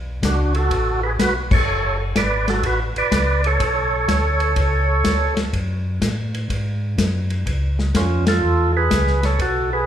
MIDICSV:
0, 0, Header, 1, 4, 480
1, 0, Start_track
1, 0, Tempo, 482315
1, 1663, Time_signature, 4, 2, 24, 8
1, 9816, End_track
2, 0, Start_track
2, 0, Title_t, "Tonewheel organ"
2, 0, Program_c, 0, 16
2, 246, Note_on_c, 0, 66, 62
2, 249, Note_on_c, 0, 62, 58
2, 534, Note_off_c, 0, 62, 0
2, 555, Note_on_c, 0, 69, 97
2, 563, Note_off_c, 0, 66, 0
2, 578, Note_on_c, 0, 66, 69
2, 996, Note_off_c, 0, 69, 0
2, 1008, Note_off_c, 0, 66, 0
2, 1029, Note_on_c, 0, 71, 94
2, 1055, Note_on_c, 0, 68, 80
2, 1100, Note_off_c, 0, 71, 0
2, 1120, Note_off_c, 0, 68, 0
2, 1190, Note_on_c, 0, 71, 109
2, 1210, Note_on_c, 0, 66, 69
2, 1332, Note_off_c, 0, 71, 0
2, 1348, Note_off_c, 0, 66, 0
2, 1507, Note_on_c, 0, 73, 100
2, 1532, Note_on_c, 0, 69, 76
2, 1951, Note_off_c, 0, 73, 0
2, 1965, Note_off_c, 0, 69, 0
2, 2158, Note_on_c, 0, 74, 92
2, 2163, Note_on_c, 0, 71, 67
2, 2451, Note_off_c, 0, 71, 0
2, 2479, Note_off_c, 0, 74, 0
2, 2483, Note_on_c, 0, 66, 64
2, 2484, Note_on_c, 0, 69, 86
2, 2623, Note_off_c, 0, 66, 0
2, 2638, Note_off_c, 0, 69, 0
2, 2646, Note_on_c, 0, 66, 78
2, 2647, Note_on_c, 0, 71, 94
2, 2785, Note_off_c, 0, 66, 0
2, 2785, Note_off_c, 0, 71, 0
2, 2966, Note_on_c, 0, 71, 82
2, 2966, Note_on_c, 0, 74, 101
2, 3401, Note_off_c, 0, 71, 0
2, 3448, Note_off_c, 0, 74, 0
2, 3448, Note_on_c, 0, 69, 71
2, 3456, Note_on_c, 0, 73, 109
2, 5316, Note_off_c, 0, 69, 0
2, 5320, Note_off_c, 0, 73, 0
2, 7922, Note_on_c, 0, 65, 76
2, 7930, Note_on_c, 0, 61, 64
2, 8211, Note_off_c, 0, 65, 0
2, 8215, Note_off_c, 0, 61, 0
2, 8242, Note_on_c, 0, 69, 103
2, 8249, Note_on_c, 0, 65, 79
2, 8681, Note_off_c, 0, 69, 0
2, 8684, Note_off_c, 0, 65, 0
2, 8725, Note_on_c, 0, 71, 107
2, 8729, Note_on_c, 0, 68, 87
2, 9164, Note_off_c, 0, 68, 0
2, 9204, Note_on_c, 0, 73, 105
2, 9209, Note_off_c, 0, 71, 0
2, 9212, Note_on_c, 0, 69, 79
2, 9349, Note_off_c, 0, 69, 0
2, 9360, Note_off_c, 0, 73, 0
2, 9369, Note_on_c, 0, 69, 97
2, 9371, Note_on_c, 0, 66, 63
2, 9657, Note_off_c, 0, 66, 0
2, 9685, Note_on_c, 0, 71, 85
2, 9686, Note_off_c, 0, 69, 0
2, 9693, Note_on_c, 0, 68, 76
2, 9816, Note_off_c, 0, 68, 0
2, 9816, Note_off_c, 0, 71, 0
2, 9816, End_track
3, 0, Start_track
3, 0, Title_t, "Tonewheel organ"
3, 0, Program_c, 1, 16
3, 0, Note_on_c, 1, 35, 80
3, 209, Note_off_c, 1, 35, 0
3, 223, Note_on_c, 1, 37, 89
3, 689, Note_off_c, 1, 37, 0
3, 700, Note_on_c, 1, 33, 81
3, 1167, Note_off_c, 1, 33, 0
3, 1183, Note_on_c, 1, 35, 91
3, 1649, Note_off_c, 1, 35, 0
3, 1652, Note_on_c, 1, 30, 83
3, 2123, Note_off_c, 1, 30, 0
3, 2145, Note_on_c, 1, 32, 75
3, 2610, Note_off_c, 1, 32, 0
3, 2619, Note_on_c, 1, 33, 79
3, 2918, Note_off_c, 1, 33, 0
3, 2935, Note_on_c, 1, 33, 37
3, 3017, Note_off_c, 1, 33, 0
3, 3100, Note_on_c, 1, 37, 87
3, 3567, Note_off_c, 1, 37, 0
3, 3579, Note_on_c, 1, 35, 82
3, 4047, Note_off_c, 1, 35, 0
3, 4061, Note_on_c, 1, 38, 94
3, 4528, Note_off_c, 1, 38, 0
3, 4540, Note_on_c, 1, 37, 87
3, 5007, Note_off_c, 1, 37, 0
3, 5020, Note_on_c, 1, 38, 89
3, 5319, Note_off_c, 1, 38, 0
3, 5335, Note_on_c, 1, 38, 39
3, 5417, Note_off_c, 1, 38, 0
3, 5504, Note_on_c, 1, 42, 78
3, 5970, Note_off_c, 1, 42, 0
3, 5983, Note_on_c, 1, 45, 83
3, 6449, Note_off_c, 1, 45, 0
3, 6462, Note_on_c, 1, 44, 84
3, 6929, Note_off_c, 1, 44, 0
3, 6945, Note_on_c, 1, 42, 90
3, 7410, Note_off_c, 1, 42, 0
3, 7423, Note_on_c, 1, 37, 81
3, 7889, Note_off_c, 1, 37, 0
3, 7900, Note_on_c, 1, 41, 89
3, 8368, Note_off_c, 1, 41, 0
3, 8384, Note_on_c, 1, 40, 86
3, 8850, Note_off_c, 1, 40, 0
3, 8860, Note_on_c, 1, 37, 89
3, 9329, Note_off_c, 1, 37, 0
3, 9342, Note_on_c, 1, 35, 87
3, 9809, Note_off_c, 1, 35, 0
3, 9816, End_track
4, 0, Start_track
4, 0, Title_t, "Drums"
4, 226, Note_on_c, 9, 36, 19
4, 228, Note_on_c, 9, 38, 55
4, 229, Note_on_c, 9, 44, 53
4, 229, Note_on_c, 9, 51, 64
4, 326, Note_off_c, 9, 36, 0
4, 328, Note_off_c, 9, 38, 0
4, 329, Note_off_c, 9, 44, 0
4, 329, Note_off_c, 9, 51, 0
4, 543, Note_on_c, 9, 51, 42
4, 643, Note_off_c, 9, 51, 0
4, 705, Note_on_c, 9, 36, 26
4, 706, Note_on_c, 9, 51, 63
4, 804, Note_off_c, 9, 36, 0
4, 806, Note_off_c, 9, 51, 0
4, 1186, Note_on_c, 9, 36, 18
4, 1188, Note_on_c, 9, 38, 69
4, 1189, Note_on_c, 9, 44, 52
4, 1189, Note_on_c, 9, 51, 67
4, 1286, Note_off_c, 9, 36, 0
4, 1288, Note_off_c, 9, 38, 0
4, 1289, Note_off_c, 9, 44, 0
4, 1289, Note_off_c, 9, 51, 0
4, 1505, Note_on_c, 9, 36, 80
4, 1507, Note_on_c, 9, 49, 66
4, 1605, Note_off_c, 9, 36, 0
4, 1606, Note_off_c, 9, 49, 0
4, 2145, Note_on_c, 9, 38, 67
4, 2146, Note_on_c, 9, 36, 21
4, 2146, Note_on_c, 9, 44, 55
4, 2146, Note_on_c, 9, 51, 59
4, 2245, Note_off_c, 9, 36, 0
4, 2245, Note_off_c, 9, 38, 0
4, 2246, Note_off_c, 9, 44, 0
4, 2246, Note_off_c, 9, 51, 0
4, 2465, Note_on_c, 9, 38, 47
4, 2466, Note_on_c, 9, 51, 46
4, 2564, Note_off_c, 9, 38, 0
4, 2565, Note_off_c, 9, 51, 0
4, 2621, Note_on_c, 9, 51, 57
4, 2623, Note_on_c, 9, 36, 24
4, 2721, Note_off_c, 9, 51, 0
4, 2722, Note_off_c, 9, 36, 0
4, 2947, Note_on_c, 9, 51, 42
4, 3046, Note_off_c, 9, 51, 0
4, 3102, Note_on_c, 9, 36, 23
4, 3102, Note_on_c, 9, 38, 63
4, 3103, Note_on_c, 9, 44, 60
4, 3103, Note_on_c, 9, 51, 67
4, 3202, Note_off_c, 9, 36, 0
4, 3202, Note_off_c, 9, 38, 0
4, 3203, Note_off_c, 9, 44, 0
4, 3203, Note_off_c, 9, 51, 0
4, 3424, Note_on_c, 9, 51, 46
4, 3524, Note_off_c, 9, 51, 0
4, 3583, Note_on_c, 9, 36, 25
4, 3584, Note_on_c, 9, 51, 67
4, 3682, Note_off_c, 9, 36, 0
4, 3684, Note_off_c, 9, 51, 0
4, 4063, Note_on_c, 9, 36, 17
4, 4065, Note_on_c, 9, 38, 58
4, 4066, Note_on_c, 9, 44, 45
4, 4066, Note_on_c, 9, 51, 59
4, 4163, Note_off_c, 9, 36, 0
4, 4164, Note_off_c, 9, 38, 0
4, 4165, Note_off_c, 9, 44, 0
4, 4165, Note_off_c, 9, 51, 0
4, 4380, Note_on_c, 9, 51, 44
4, 4479, Note_off_c, 9, 51, 0
4, 4540, Note_on_c, 9, 51, 64
4, 4541, Note_on_c, 9, 36, 24
4, 4639, Note_off_c, 9, 51, 0
4, 4641, Note_off_c, 9, 36, 0
4, 5020, Note_on_c, 9, 38, 65
4, 5021, Note_on_c, 9, 44, 51
4, 5021, Note_on_c, 9, 51, 67
4, 5023, Note_on_c, 9, 36, 20
4, 5120, Note_off_c, 9, 38, 0
4, 5121, Note_off_c, 9, 44, 0
4, 5121, Note_off_c, 9, 51, 0
4, 5122, Note_off_c, 9, 36, 0
4, 5341, Note_on_c, 9, 38, 49
4, 5342, Note_on_c, 9, 51, 47
4, 5440, Note_off_c, 9, 38, 0
4, 5441, Note_off_c, 9, 51, 0
4, 5505, Note_on_c, 9, 36, 20
4, 5508, Note_on_c, 9, 51, 55
4, 5605, Note_off_c, 9, 36, 0
4, 5607, Note_off_c, 9, 51, 0
4, 5986, Note_on_c, 9, 36, 18
4, 5988, Note_on_c, 9, 38, 60
4, 5989, Note_on_c, 9, 44, 59
4, 5989, Note_on_c, 9, 51, 66
4, 6086, Note_off_c, 9, 36, 0
4, 6087, Note_off_c, 9, 38, 0
4, 6088, Note_off_c, 9, 44, 0
4, 6088, Note_off_c, 9, 51, 0
4, 6314, Note_on_c, 9, 51, 42
4, 6414, Note_off_c, 9, 51, 0
4, 6467, Note_on_c, 9, 36, 28
4, 6470, Note_on_c, 9, 51, 60
4, 6566, Note_off_c, 9, 36, 0
4, 6570, Note_off_c, 9, 51, 0
4, 6947, Note_on_c, 9, 36, 20
4, 6950, Note_on_c, 9, 38, 63
4, 6951, Note_on_c, 9, 44, 59
4, 6951, Note_on_c, 9, 51, 64
4, 7047, Note_off_c, 9, 36, 0
4, 7049, Note_off_c, 9, 38, 0
4, 7050, Note_off_c, 9, 44, 0
4, 7050, Note_off_c, 9, 51, 0
4, 7268, Note_on_c, 9, 51, 40
4, 7367, Note_off_c, 9, 51, 0
4, 7427, Note_on_c, 9, 36, 22
4, 7432, Note_on_c, 9, 51, 56
4, 7527, Note_off_c, 9, 36, 0
4, 7531, Note_off_c, 9, 51, 0
4, 7752, Note_on_c, 9, 38, 38
4, 7852, Note_off_c, 9, 38, 0
4, 7906, Note_on_c, 9, 36, 20
4, 7907, Note_on_c, 9, 38, 64
4, 7908, Note_on_c, 9, 44, 41
4, 7908, Note_on_c, 9, 51, 68
4, 8006, Note_off_c, 9, 36, 0
4, 8006, Note_off_c, 9, 38, 0
4, 8007, Note_off_c, 9, 44, 0
4, 8007, Note_off_c, 9, 51, 0
4, 8225, Note_on_c, 9, 38, 73
4, 8226, Note_on_c, 9, 51, 64
4, 8325, Note_off_c, 9, 38, 0
4, 8326, Note_off_c, 9, 51, 0
4, 8866, Note_on_c, 9, 36, 26
4, 8866, Note_on_c, 9, 38, 67
4, 8867, Note_on_c, 9, 44, 55
4, 8867, Note_on_c, 9, 51, 63
4, 8965, Note_off_c, 9, 38, 0
4, 8966, Note_off_c, 9, 36, 0
4, 8966, Note_off_c, 9, 44, 0
4, 8966, Note_off_c, 9, 51, 0
4, 9027, Note_on_c, 9, 38, 28
4, 9127, Note_off_c, 9, 38, 0
4, 9186, Note_on_c, 9, 38, 36
4, 9188, Note_on_c, 9, 51, 48
4, 9285, Note_off_c, 9, 38, 0
4, 9288, Note_off_c, 9, 51, 0
4, 9346, Note_on_c, 9, 36, 22
4, 9349, Note_on_c, 9, 51, 58
4, 9446, Note_off_c, 9, 36, 0
4, 9449, Note_off_c, 9, 51, 0
4, 9816, End_track
0, 0, End_of_file